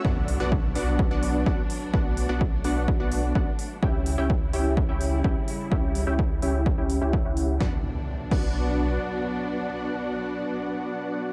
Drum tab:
CC |--------|--------|--------|--------|
HH |-o-o-o-o|-o-o-o-o|-o-o-o-o|-o-o-o-o|
SD |--------|--------|--------|--------|
BD |o-o-o-o-|o-o-o-o-|o-o-o-o-|o-o-o-o-|

CC |---x----|--------|
HH |--------|--------|
SD |o-------|--------|
BD |o--o----|--------|